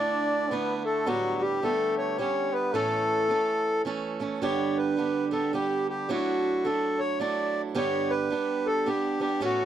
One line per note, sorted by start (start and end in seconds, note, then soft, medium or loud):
0.00 0.51 D3 soft
0.00 0.52 A3 medium
0.00 0.52 D4 medium
0.00 0.53 D4 medium
0.00 0.52 E4 medium
0.00 0.53 D5 medium
0.51 1.06 D3 medium
0.51 1.07 A3 medium
0.51 0.77 B3 medium
0.51 1.07 D4 medium
0.51 1.08 E4 medium
0.51 0.83 B4 medium
0.78 0.87 B3 soft
0.85 1.09 A3 medium
0.85 1.08 A4 medium
1.06 1.63 A2 medium
1.06 1.61 D3 medium
1.06 1.44 F#3 medium
1.06 1.62 G3 medium
1.06 1.63 B3 medium
1.06 1.42 F#4 medium
1.06 1.63 G4 medium
1.41 1.63 G3 medium
1.41 1.64 G4 medium
1.62 2.17 D3 medium
1.62 2.18 G3 medium
1.62 2.21 A3 medium
1.62 2.19 B3 medium
1.62 2.20 G4 medium
1.62 1.95 A4 medium
1.98 2.17 C#5 medium
2.18 2.74 D3 medium
2.18 2.75 G3 medium
2.18 2.74 B3 medium
2.18 2.55 C#4 medium
2.18 2.75 G4 medium
2.18 2.54 C#5 medium
2.53 2.76 B3 medium
2.53 2.76 B4 medium
2.74 3.30 A2 medium
2.74 3.28 E3 medium
2.74 3.86 A3 medium
2.74 3.28 A3 medium
2.74 3.29 C#4 medium
2.74 3.82 A4 medium
2.74 3.30 A4 medium
3.29 3.84 E3 soft
3.29 3.85 A3 medium
3.29 3.85 C#4 medium
3.29 3.86 A4 medium
3.85 4.18 E3 medium
3.85 4.19 A3 medium
3.85 4.20 C#4 medium
3.85 4.21 A4 medium
4.20 4.41 E3 medium
4.20 4.42 A3 medium
4.20 4.42 C#4 medium
4.20 4.43 A4 medium
4.42 4.97 G2 medium
4.42 6.14 D3 medium
4.42 4.96 G3 medium
4.42 4.97 B3 medium
4.42 4.98 D4 medium
4.42 4.98 G4 medium
4.42 4.78 C#5 medium
4.77 5.29 B4 medium
4.97 5.30 G3 soft
4.97 5.31 B3 soft
4.97 5.32 D4 medium
4.97 5.33 G4 medium
5.31 5.52 G3 medium
5.31 5.53 B3 medium
5.31 5.53 D4 medium
5.31 5.54 G4 medium
5.31 5.52 A4 medium
5.53 6.08 G3 medium
5.53 6.09 B3 medium
5.53 6.10 D4 medium
5.53 5.87 G4 medium
5.53 6.10 G4 medium
5.89 6.10 G4 medium
6.09 6.63 F#3 medium
6.09 6.64 A3 medium
6.09 6.65 D4 medium
6.09 6.65 E4 medium
6.09 6.67 F#4 medium
6.64 7.18 F#3 medium
6.64 7.19 A3 medium
6.64 7.21 D4 medium
6.64 7.21 E4 medium
6.64 7.00 A4 medium
6.99 7.19 C#5 medium
7.20 7.75 F#3 medium
7.20 7.75 A3 medium
7.20 7.74 D4 medium
7.20 7.76 E4 medium
7.20 7.62 D5 medium
7.75 8.31 G2 medium
7.75 8.31 D3 medium
7.75 8.29 G3 medium
7.75 8.30 B3 medium
7.75 8.31 D4 medium
7.75 8.31 G4 medium
7.75 8.11 C#5 loud
8.10 8.67 B4 medium
8.30 8.85 G3 medium
8.30 8.85 B3 medium
8.30 8.86 D4 medium
8.30 8.87 G4 medium
8.66 8.88 A4 medium
8.86 9.19 G3 medium
8.86 9.19 B3 medium
8.86 9.20 D4 medium
8.86 9.20 G4 medium
8.86 9.21 G4 medium
9.20 9.41 G3 soft
9.20 9.41 B3 soft
9.20 9.42 D4 medium
9.20 9.42 G4 medium
9.20 9.41 G4 medium
9.41 9.65 A2 medium
9.41 9.65 E3 medium
9.41 9.65 A3 medium
9.41 9.65 C#4 medium
9.41 9.65 F#4 medium
9.41 9.65 A4 medium